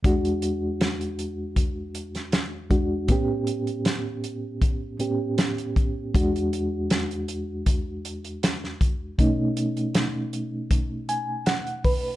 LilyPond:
<<
  \new Staff \with { instrumentName = "Reed electric piano" } { \time 4/4 \key e \mixolydian \tempo 4 = 79 << { r1 | r1 | r1 | r2 r8 gis''8 fis''8 b'8 | } \\ { <e, gis d' fis'>2.~ <e, gis d' fis'>8 <e, gis d' fis'>8 | <a, b cis' g'>2~ <a, b cis' g'>8 <a, b cis' g'>4. | <e, gis d' fis'>1 | <b, a cis' dis'>1 | } >> }
  \new DrumStaff \with { instrumentName = "Drums" } \drummode { \time 4/4 <hh bd>16 hh16 hh8 <hh sn>16 hh16 hh8 <hh bd>8 hh16 <hh sn>16 <hh sn>8 <hh bd>8 | <hh bd>8 hh16 hh16 <hh sn>8 hh8 <hh bd>8 hh8 <hh sn>16 hh16 <hh bd>8 | <hh bd>16 hh16 hh8 <hh sn>16 hh16 hh8 <hh bd>8 hh16 hh16 <hh sn>16 sn16 <hh bd>8 | <hh bd>8 hh16 hh16 <hh sn>8 hh8 <hh bd>8 hh8 <hh sn>16 hh16 <hho bd>8 | }
>>